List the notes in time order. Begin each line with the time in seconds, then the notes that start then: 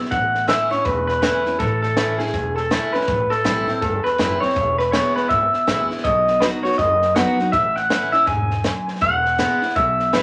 Already playing: E4
0.00 B3
0.05 snare
0.11 A1 A2 F#5, kick, snare
0.35 snare
0.48 E3 A3 C#4 E4 E5, snare, hi-hat pedal
0.71 C#4 E4 C#5, muted upright bass stroke, snare
0.85 E1 E2 B4, kick, snare
1.07 B4, snare
1.22 E3 A3 C#4 E4 B4, snare, hi-hat pedal
1.45 C#4 E4, muted upright bass stroke, snare
1.59 A1 A2 A4, kick, snare
1.82 A4, snare
1.97 E3 A3 C#4 E4, snare, hi-hat pedal
2.18 C#4 E4 G#4, muted upright bass stroke, snare
2.27 snare
2.34 E1 E2, kick, snare
2.56 A4, snare
2.71 E3 A3 C#4 E4, snare, hi-hat pedal
2.93 C#4 E4 B4, muted upright bass stroke, snare
3.01 snare
3.08 A1 A2, kick, snare
3.30 A4, muted upright bass stroke, snare
3.44 A1 E3 G3 C4 E4, snare, hi-hat pedal
3.67 C4 E4, muted upright bass stroke, snare
3.81 G1 E2 A4, kick, snare
4.04 B4, muted upright bass stroke, snare
4.18 F#1 E3 G3 C4 E4, snare, hi-hat pedal
4.40 C4 E4 C#5, muted upright bass stroke, snare
4.49 snare
4.56 E1 E2, kick, snare
4.78 B4, snare
4.92 E3 G#3 B3 E4 C#5, snare, hi-hat pedal
5.16 B4, muted upright bass stroke, snare
5.29 G#1 B2 E5, kick, snare
5.53 muted upright bass stroke, snare
5.67 A1 E3 G#3 B3 E4, snare, hi-hat pedal
5.90 B3 E4, muted upright bass stroke, snare
5.98 snare
6.04 B1 B2 D#5, kick, snare
6.28 snare
6.40 F#3 B3 D#4 F#4 B4, snare, hi-hat pedal
6.63 D#4 F#4 C#5, muted upright bass stroke, snare
6.72 snare
6.78 F#1 F#2 D#5, kick, snare
7.02 snare
7.16 F#3 B3 D#4 F#4 F#5, snare, hi-hat pedal
7.39 D#4 F#4, muted upright bass stroke, snare
7.52 A1 A2 E5, kick, snare
7.76 F#5, snare
7.90 E3 A3 C#4 E4, snare, hi-hat pedal
8.12 C#4 E4 E5, muted upright bass stroke, snare
8.27 E1 G#2 G#5, kick, snare
8.51 snare
8.64 F#2, snare, hi-hat pedal
8.87 muted upright bass stroke, snare
8.95 snare
9.01 E1 E2 F#5, kick, snare
9.25 snare
9.38 E3 G#3 B3 E4, snare, hi-hat pedal
9.62 B3 E4, muted upright bass stroke, snare
9.69 snare
9.76 B1 B2 E5, kick, snare
9.99 snare
10.13 E3 G#3 B3 E4 B4, snare, hi-hat pedal